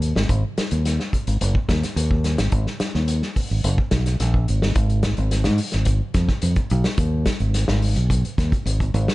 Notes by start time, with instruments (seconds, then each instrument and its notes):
Already playing: fingered electric bass D#2
0.02 closed hi-hat
0.15 fingered electric bass G#1, snare
0.29 fingered electric bass G#1, kick, closed hi-hat
0.58 muted fingered electric bass stroke, snare, closed hi-hat
0.71 fingered electric bass D#2, closed hi-hat
0.85 snare, closed hi-hat
1.00 snare
1.13 kick, closed hi-hat
1.27 fingered electric bass G#1, closed hi-hat
1.41 fingered electric bass F#1, closed hi-hat
1.55 kick
1.68 fingered electric bass D#2, kick, snare, closed hi-hat
1.83 muted fingered electric bass stroke, snare, closed hi-hat
1.96 fingered electric bass D#2, closed hi-hat
2.11 kick
2.24 snare, closed hi-hat
2.38 fingered electric bass G#1, snare, closed hi-hat
2.52 fingered electric bass G#1, kick, closed hi-hat
2.66 snare
2.80 muted fingered electric bass stroke, snare, closed hi-hat
2.95 fingered electric bass D#2, snare
3.08 closed hi-hat
3.22 snare
3.36 kick, open hi-hat
3.51 fingered electric bass G#1
3.64 fingered electric bass F#1, closed hi-hat
3.78 kick
3.91 fingered electric bass B1, kick, snare, closed hi-hat
4.06 snare, closed hi-hat
4.20 fingered electric bass A#1, snare, closed hi-hat
4.34 kick
4.48 fingered electric bass G#1, closed hi-hat
4.62 snare
4.75 fingered electric bass G#1, kick, closed hi-hat
4.89 closed hi-hat
5.03 kick, snare, closed hi-hat
5.17 fingered electric bass G#1, closed hi-hat
5.31 snare, closed hi-hat
5.44 fingered electric bass G#2, snare, closed hi-hat
5.58 open hi-hat
5.72 fingered electric bass G#1, snare, closed hi-hat
5.85 kick, closed hi-hat
6.14 fingered electric bass F2, kick, snare, closed hi-hat
6.28 muted fingered electric bass stroke, kick, snare
6.42 fingered electric bass F2, closed hi-hat
6.56 kick, closed hi-hat
6.70 fingered electric bass B1, closed hi-hat
6.84 snare, closed hi-hat
6.97 fingered electric bass D#2, kick, closed hi-hat
7.25 kick, snare, closed hi-hat
7.40 fingered electric bass G#1, closed hi-hat
7.54 snare, closed hi-hat
7.68 fingered electric bass G#1, snare
7.82 open hi-hat
7.96 fingered electric bass B1, closed hi-hat
8.10 kick, closed hi-hat
8.24 muted fingered electric bass stroke, closed hi-hat
8.38 fingered electric bass D#2, kick, snare, closed hi-hat
8.52 muted fingered electric bass stroke, kick, closed hi-hat
8.66 fingered electric bass G#1, closed hi-hat
8.80 kick, closed hi-hat
8.94 fingered electric bass G#1, closed hi-hat
9.08 snare